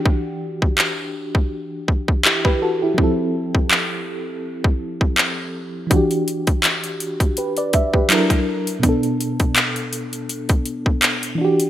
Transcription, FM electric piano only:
Already playing: E3 D4 F#4 G4
2.26 E4 G4
2.45 G4 B4
2.62 F#4 A4
2.82 E4 G4
2.94 F3 C4
3.00 E4 A4
5.87 E3 D4
5.93 F#4 G4
7.38 G4 B4
7.58 B4 D5
7.75 E5
7.95 G4 B4
8.09 F#3 D4 E4 A4
8.13 A#4
8.80 B2 B3
8.86 D4 A4
11.35 E3 D4
11.41 F#4 G4

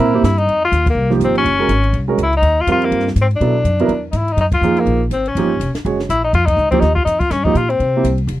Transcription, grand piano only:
Already playing: A#3 C4 E4 A#4
0.14 A#3 C4 E4 G4
1.10 F3 A#3 D#4 G4
1.59 G#3 C#4 F#4 A#4
2.08 G#3 C#4 F#4 A#4
2.68 G3 C4 F4 A#4
3.41 F#3 B3 E4 A4
3.80 F#3 B3 E4 A#4
4.63 F3 A#3 D#4 G#4
5.38 F3 A#3 D#4 G4
5.86 G#3 C#4 F#4 C#5
6.73 F3 A#3 D#4 G4
7.46 F3 A#3 D#4 G4
7.96 A#3 C4 E4 G4

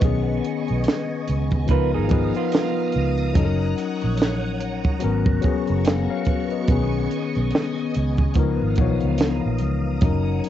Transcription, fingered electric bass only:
0.03 B1
0.70 B1
1.29 C#2
1.70 C#2
1.96 G#1
2.96 C#2
3.37 F#1
4.04 A#1
5.04 G#1
5.45 muted fingered electric bass stroke
5.70 F#1
6.69 B1
7.36 B1
7.96 C#2
8.37 C#2
8.62 G#1
8.79 B1
9.03 C#2
9.46 A#1
9.63 C#2
10.03 F#1

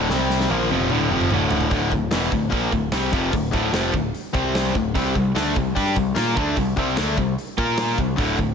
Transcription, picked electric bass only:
0.10 C2
0.50 A#1
0.71 F1
0.92 D1
1.11 F1
1.31 D1
1.71 D1
1.92 D1
2.12 E1
2.32 D1
2.52 A#1
2.73 D1
2.92 C2
3.13 F1
3.33 D1
3.54 D1
3.73 F1
3.93 D1
4.34 C2
4.75 D1
4.95 C2
5.15 C2
5.35 D2
5.56 C2
5.76 G2
5.96 C2
6.17 A#2
6.36 D2
6.57 C2
6.76 C2
6.99 D2
7.17 C2
7.58 A#2
7.98 C2
8.18 D1
8.38 D1

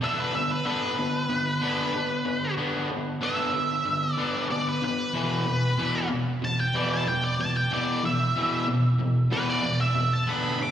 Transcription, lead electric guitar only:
0.04 E5
0.20 B4
0.35 E5
0.51 B4
0.66 B4
3.23 E5
4.11 D5
4.52 D5
4.69 B4
4.84 B4
6.45 A5
6.60 G5
6.76 D5
6.93 A5
7.08 G5
7.24 D5
7.41 A5
7.57 G5
7.73 D5
8.05 E5
9.33 B4
9.49 D5
9.81 E5
10.13 A5
10.29 B5
10.63 D6

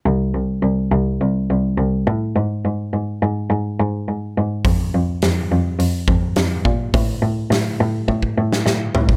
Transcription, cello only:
0.06 C2
0.34 C2
0.63 C2
0.92 C2
1.21 C2
1.50 C2
1.78 C2
2.07 A2
2.36 G#2
2.65 G#2
2.93 G#2
3.22 G#2
3.50 G#2
3.80 G#2
4.08 G#2
4.37 G#2
4.65 F2
4.94 F2
5.23 F2
5.52 F2
5.79 F2
6.08 F2
6.36 F2
6.66 A#2
6.94 A2
7.22 A2
7.51 A2
7.81 A2
8.08 A2
8.38 A2
8.66 A2
8.95 A2

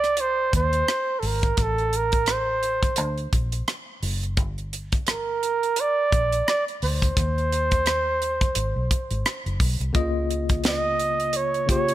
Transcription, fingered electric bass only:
Already playing: C2
0.53 D#2
1.23 G#1
1.58 A1
2.98 D2
3.33 A#1
4.03 F#1
4.38 G1
6.13 A#1
6.83 D2
7.17 D#2
8.56 G#1
8.76 B1
9.11 G#1
9.46 F#1
9.60 B1
9.80 C2
9.95 C#2
11.69 F2

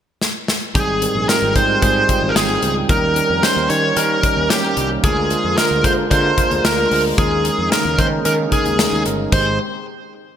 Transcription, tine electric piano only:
0.74 G#2 G3 C4 D#4 G#4
1.01 G3 C4 D#4 A#4
1.28 G3 C4 D#4 F4
1.55 G3 C4 D#4 G#4
1.82 G3 C4 D#4 G#4
2.09 G3 C4 D#4 F4
2.35 G3 C4 D#4 G#4
2.62 G3 C4 D#4 G#4
2.89 D#3 G3 C#4 D#4 A#4
3.16 G3 C#4 D#4 A#4
3.42 G3 C#4 D#4 A#4
3.69 G3 C#4 D#4 C5
3.96 G3 C#4 D#4 A#4
4.23 G3 C#4 D#4 A#4
4.50 G3 C#4 D#4 A#4
4.76 G3 C#4 D#4 A#4
5.03 D3 G#3 D4 F4 A#4
5.30 G#3 D4 F4 C5
5.57 G#3 D4 F4 A#4
5.84 G#3 D4 F4 A#4
6.10 G#3 D4 F4 A#4
6.37 G#3 D4 F4 A#4
6.64 G#3 D4 F4 A#4
6.91 G#3 D4 F4 C5
7.17 D#3 G#3 C#4 D#4 A#4
7.44 G#3 C#4 D#4 A#4
7.71 G#3 C#4 D#4 A#4
7.97 G#3 C#4 D#4 A#4
8.24 G#3 C#4 D#4 A#4
8.51 G#3 C#4 D#4 A#4
8.78 G#3 C#4 D#4 A#4
9.05 G#3 C#4 D#4 A#4
9.32 G#1 G#3 D#4 G4 C5

